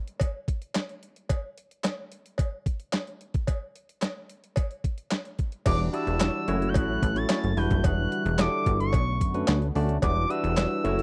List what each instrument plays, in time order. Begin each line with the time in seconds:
0.08 closed hi-hat
0.20 kick, closed hi-hat, cowbell
0.48 kick, closed hi-hat
0.62 closed hi-hat
0.74 snare, clap, closed hi-hat, cowbell
0.89 closed hi-hat
1.03 closed hi-hat
1.16 closed hi-hat
1.29 kick, closed hi-hat, cowbell
1.58 closed hi-hat
1.71 closed hi-hat
1.84 snare, clap, closed hi-hat, cowbell
2.12 closed hi-hat
2.26 closed hi-hat
2.38 kick, closed hi-hat, cowbell
2.66 kick, closed hi-hat
2.80 closed hi-hat
2.93 snare, clap, closed hi-hat, cowbell
3.07 closed hi-hat
3.21 closed hi-hat
3.34 kick, closed hi-hat
3.47 kick, closed hi-hat, cowbell
3.76 closed hi-hat
3.89 closed hi-hat
4.02 snare, clap, closed hi-hat, cowbell
4.29 closed hi-hat
4.44 closed hi-hat
4.56 kick, closed hi-hat, cowbell
4.71 closed hi-hat
4.84 kick, closed hi-hat
4.98 closed hi-hat
5.11 snare, clap, closed hi-hat, cowbell
5.25 closed hi-hat
5.39 kick, closed hi-hat
5.52 closed hi-hat
5.66 analog synth bass E1, analog synth pad E3 G3 D4 F#4, tine electric piano G3 D4 E4 F#4 B4, analog synth lead D6, kick, closed hi-hat, crash, cowbell
5.93 tine electric piano G3 D4 E4 F#4 D5, analog synth lead E6, closed hi-hat
6.07 analog synth bass E1, closed hi-hat
6.20 snare, clap, closed hi-hat, cowbell
6.48 analog synth bass F#1, analog synth pad F#3 E4 A4, tine electric piano A3 C#4 E4 F#4 C#5, closed hi-hat
6.62 closed hi-hat
6.69 analog synth lead G6
6.74 analog synth bass A1, analog synth lead F#6, kick, closed hi-hat, cowbell
7.03 analog synth bass A1, kick, closed hi-hat
7.16 tine electric piano A3 C#4 E4 F#4 C#5, analog synth lead A6, closed hi-hat
7.29 tine electric piano A3 C#4 E4 F#4 C#5, snare, clap, closed hi-hat, cowbell
7.44 analog synth bass F#1, closed hi-hat
7.57 analog synth bass E1, analog synth pad D3 E3 G3 F#4, tine electric piano G3 D4 E4 F#4 B4, analog synth lead G6, open hi-hat
7.71 analog synth bass F#1, kick, closed hi-hat
7.84 analog synth bass E1, analog synth lead F#6, kick, closed hi-hat, cowbell
8.12 closed hi-hat
8.25 analog synth bass E1, closed hi-hat
8.38 tine electric piano G3 D4 E4 F#4 A4, analog synth lead D6, snare, clap, closed hi-hat, cowbell
8.66 analog synth bass G1, kick, closed hi-hat
8.80 analog synth lead C#6, closed hi-hat
8.93 analog synth bass B1, analog synth pad A3 B3, kick, closed hi-hat, cowbell
9.21 analog synth bass F#2, kick, closed hi-hat
9.34 tine electric piano A3 C#4 D4 F#4 B4, closed hi-hat
9.47 analog synth bass D2, snare, clap, closed hi-hat, cowbell
9.62 closed hi-hat
9.75 analog synth bass D2, tine electric piano A3 C#4 D4 F#4 D5, open hi-hat
9.89 closed hi-hat
10.02 analog synth bass E1, analog synth pad E3 G3 D4 F#4, tine electric piano G3 D4 E4 F#4 B4, analog synth lead D6, kick, closed hi-hat, cowbell
10.29 tine electric piano G3 D4 E4 F#4 B4, analog synth lead E6, closed hi-hat
10.44 analog synth bass E1, closed hi-hat
10.57 snare, clap, closed hi-hat, cowbell
10.84 analog synth bass F#1, analog synth pad F#3 E4 A4, tine electric piano A3 C#4 E4 F#4 C#5, closed hi-hat
10.99 closed hi-hat